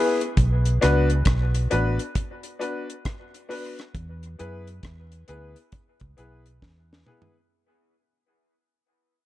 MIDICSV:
0, 0, Header, 1, 4, 480
1, 0, Start_track
1, 0, Tempo, 894188
1, 198, Time_signature, 4, 2, 24, 8
1, 4966, End_track
2, 0, Start_track
2, 0, Title_t, "Upright piano"
2, 0, Program_c, 0, 0
2, 0, Note_on_c, 0, 59, 92
2, 0, Note_on_c, 0, 64, 81
2, 0, Note_on_c, 0, 68, 91
2, 0, Note_on_c, 0, 71, 96
2, 99, Note_off_c, 0, 59, 0
2, 101, Note_off_c, 0, 64, 0
2, 102, Note_off_c, 0, 68, 0
2, 103, Note_off_c, 0, 71, 0
2, 436, Note_on_c, 0, 59, 97
2, 438, Note_on_c, 0, 62, 92
2, 441, Note_on_c, 0, 66, 92
2, 443, Note_on_c, 0, 71, 112
2, 579, Note_off_c, 0, 59, 0
2, 580, Note_off_c, 0, 62, 0
2, 581, Note_off_c, 0, 66, 0
2, 582, Note_off_c, 0, 71, 0
2, 915, Note_on_c, 0, 59, 91
2, 917, Note_on_c, 0, 62, 82
2, 919, Note_on_c, 0, 66, 84
2, 921, Note_on_c, 0, 71, 112
2, 1058, Note_off_c, 0, 59, 0
2, 1059, Note_off_c, 0, 62, 0
2, 1060, Note_off_c, 0, 66, 0
2, 1061, Note_off_c, 0, 71, 0
2, 1391, Note_on_c, 0, 59, 86
2, 1393, Note_on_c, 0, 62, 84
2, 1397, Note_on_c, 0, 66, 78
2, 1398, Note_on_c, 0, 71, 98
2, 1536, Note_off_c, 0, 59, 0
2, 1537, Note_off_c, 0, 62, 0
2, 1539, Note_off_c, 0, 66, 0
2, 1540, Note_off_c, 0, 71, 0
2, 1872, Note_on_c, 0, 59, 88
2, 1874, Note_on_c, 0, 62, 75
2, 1877, Note_on_c, 0, 66, 82
2, 1879, Note_on_c, 0, 71, 103
2, 2016, Note_off_c, 0, 59, 0
2, 2017, Note_off_c, 0, 62, 0
2, 2019, Note_off_c, 0, 66, 0
2, 2020, Note_off_c, 0, 71, 0
2, 2354, Note_on_c, 0, 59, 86
2, 2357, Note_on_c, 0, 64, 87
2, 2358, Note_on_c, 0, 68, 79
2, 2361, Note_on_c, 0, 71, 105
2, 2497, Note_off_c, 0, 59, 0
2, 2499, Note_off_c, 0, 64, 0
2, 2499, Note_off_c, 0, 68, 0
2, 2500, Note_off_c, 0, 71, 0
2, 2832, Note_on_c, 0, 59, 96
2, 2835, Note_on_c, 0, 64, 77
2, 2838, Note_on_c, 0, 68, 81
2, 2840, Note_on_c, 0, 71, 99
2, 2976, Note_off_c, 0, 59, 0
2, 2978, Note_off_c, 0, 64, 0
2, 2979, Note_off_c, 0, 68, 0
2, 2980, Note_off_c, 0, 71, 0
2, 3312, Note_on_c, 0, 59, 95
2, 3315, Note_on_c, 0, 64, 81
2, 3317, Note_on_c, 0, 68, 82
2, 3320, Note_on_c, 0, 71, 95
2, 3456, Note_off_c, 0, 59, 0
2, 3458, Note_off_c, 0, 64, 0
2, 3458, Note_off_c, 0, 68, 0
2, 3460, Note_off_c, 0, 71, 0
2, 3792, Note_on_c, 0, 59, 94
2, 3794, Note_on_c, 0, 64, 82
2, 3797, Note_on_c, 0, 68, 80
2, 3798, Note_on_c, 0, 71, 88
2, 3936, Note_off_c, 0, 59, 0
2, 3937, Note_off_c, 0, 64, 0
2, 3939, Note_off_c, 0, 68, 0
2, 3939, Note_off_c, 0, 71, 0
2, 4966, End_track
3, 0, Start_track
3, 0, Title_t, "Fingered electric bass"
3, 0, Program_c, 1, 33
3, 204, Note_on_c, 1, 35, 99
3, 416, Note_off_c, 1, 35, 0
3, 449, Note_on_c, 1, 37, 93
3, 658, Note_off_c, 1, 37, 0
3, 679, Note_on_c, 1, 35, 83
3, 893, Note_off_c, 1, 35, 0
3, 926, Note_on_c, 1, 33, 84
3, 1058, Note_off_c, 1, 33, 0
3, 2122, Note_on_c, 1, 40, 105
3, 2334, Note_off_c, 1, 40, 0
3, 2363, Note_on_c, 1, 42, 91
3, 2574, Note_off_c, 1, 42, 0
3, 2598, Note_on_c, 1, 40, 83
3, 2811, Note_off_c, 1, 40, 0
3, 2840, Note_on_c, 1, 38, 75
3, 2974, Note_off_c, 1, 38, 0
3, 3233, Note_on_c, 1, 37, 81
3, 3309, Note_off_c, 1, 37, 0
3, 3321, Note_on_c, 1, 35, 94
3, 3533, Note_off_c, 1, 35, 0
3, 3559, Note_on_c, 1, 40, 90
3, 3772, Note_off_c, 1, 40, 0
3, 4966, End_track
4, 0, Start_track
4, 0, Title_t, "Drums"
4, 114, Note_on_c, 9, 42, 55
4, 168, Note_off_c, 9, 42, 0
4, 199, Note_on_c, 9, 42, 87
4, 200, Note_on_c, 9, 36, 98
4, 253, Note_off_c, 9, 42, 0
4, 254, Note_off_c, 9, 36, 0
4, 351, Note_on_c, 9, 42, 47
4, 405, Note_off_c, 9, 42, 0
4, 442, Note_on_c, 9, 42, 81
4, 444, Note_on_c, 9, 37, 74
4, 496, Note_off_c, 9, 42, 0
4, 498, Note_off_c, 9, 37, 0
4, 589, Note_on_c, 9, 42, 42
4, 643, Note_off_c, 9, 42, 0
4, 673, Note_on_c, 9, 42, 87
4, 676, Note_on_c, 9, 36, 116
4, 682, Note_on_c, 9, 37, 103
4, 726, Note_off_c, 9, 42, 0
4, 730, Note_off_c, 9, 36, 0
4, 736, Note_off_c, 9, 37, 0
4, 829, Note_on_c, 9, 42, 51
4, 883, Note_off_c, 9, 42, 0
4, 917, Note_on_c, 9, 42, 72
4, 971, Note_off_c, 9, 42, 0
4, 1070, Note_on_c, 9, 42, 51
4, 1124, Note_off_c, 9, 42, 0
4, 1156, Note_on_c, 9, 42, 106
4, 1157, Note_on_c, 9, 36, 112
4, 1210, Note_off_c, 9, 42, 0
4, 1211, Note_off_c, 9, 36, 0
4, 1307, Note_on_c, 9, 42, 51
4, 1360, Note_off_c, 9, 42, 0
4, 1403, Note_on_c, 9, 42, 75
4, 1457, Note_off_c, 9, 42, 0
4, 1555, Note_on_c, 9, 42, 59
4, 1609, Note_off_c, 9, 42, 0
4, 1638, Note_on_c, 9, 42, 97
4, 1640, Note_on_c, 9, 36, 103
4, 1643, Note_on_c, 9, 37, 115
4, 1692, Note_off_c, 9, 42, 0
4, 1693, Note_off_c, 9, 36, 0
4, 1697, Note_off_c, 9, 37, 0
4, 1795, Note_on_c, 9, 42, 44
4, 1849, Note_off_c, 9, 42, 0
4, 1883, Note_on_c, 9, 46, 71
4, 1937, Note_off_c, 9, 46, 0
4, 2033, Note_on_c, 9, 42, 49
4, 2038, Note_on_c, 9, 37, 65
4, 2087, Note_off_c, 9, 42, 0
4, 2092, Note_off_c, 9, 37, 0
4, 2118, Note_on_c, 9, 36, 103
4, 2118, Note_on_c, 9, 42, 87
4, 2172, Note_off_c, 9, 36, 0
4, 2172, Note_off_c, 9, 42, 0
4, 2270, Note_on_c, 9, 42, 45
4, 2324, Note_off_c, 9, 42, 0
4, 2359, Note_on_c, 9, 42, 84
4, 2413, Note_off_c, 9, 42, 0
4, 2509, Note_on_c, 9, 42, 44
4, 2563, Note_off_c, 9, 42, 0
4, 2593, Note_on_c, 9, 42, 86
4, 2595, Note_on_c, 9, 36, 101
4, 2602, Note_on_c, 9, 37, 98
4, 2646, Note_off_c, 9, 42, 0
4, 2648, Note_off_c, 9, 36, 0
4, 2656, Note_off_c, 9, 37, 0
4, 2747, Note_on_c, 9, 42, 53
4, 2801, Note_off_c, 9, 42, 0
4, 2833, Note_on_c, 9, 42, 73
4, 2887, Note_off_c, 9, 42, 0
4, 2985, Note_on_c, 9, 42, 50
4, 3038, Note_off_c, 9, 42, 0
4, 3071, Note_on_c, 9, 42, 98
4, 3074, Note_on_c, 9, 36, 117
4, 3125, Note_off_c, 9, 42, 0
4, 3128, Note_off_c, 9, 36, 0
4, 3220, Note_on_c, 9, 42, 50
4, 3228, Note_on_c, 9, 36, 91
4, 3273, Note_off_c, 9, 42, 0
4, 3282, Note_off_c, 9, 36, 0
4, 3316, Note_on_c, 9, 42, 67
4, 3369, Note_off_c, 9, 42, 0
4, 3466, Note_on_c, 9, 42, 57
4, 3520, Note_off_c, 9, 42, 0
4, 3556, Note_on_c, 9, 36, 116
4, 3557, Note_on_c, 9, 38, 57
4, 3609, Note_off_c, 9, 36, 0
4, 3610, Note_off_c, 9, 38, 0
4, 3719, Note_on_c, 9, 38, 70
4, 3772, Note_off_c, 9, 38, 0
4, 3793, Note_on_c, 9, 45, 75
4, 3846, Note_off_c, 9, 45, 0
4, 3875, Note_on_c, 9, 43, 97
4, 3928, Note_off_c, 9, 43, 0
4, 4966, End_track
0, 0, End_of_file